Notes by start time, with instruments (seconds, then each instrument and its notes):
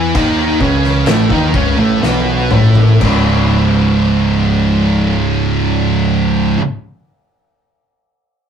Already playing: picked electric bass E2, distorted electric guitar E3 E4
0.15 picked electric bass D#2, distorted electric guitar D#3 D#4, kick, crash
0.60 picked electric bass C#2, distorted electric guitar C#3 C#4, kick
0.84 snare
1.06 picked electric bass A1, distorted electric guitar A2 A3, snare, crash
1.30 picked electric bass D#2, distorted electric guitar D#3 D#4, kick
1.54 picked electric bass C#2, distorted electric guitar C#3 C#4, kick
1.78 picked electric bass A1, distorted electric guitar A2 A3
2.01 picked electric bass B1, distorted electric guitar B2 B3, snare
2.51 picked electric bass A1, distorted electric guitar A2 A3, mid tom
2.75 floor tom
3.00 picked electric bass C#1, distorted electric guitar C#2 G#2 C#3, kick, crash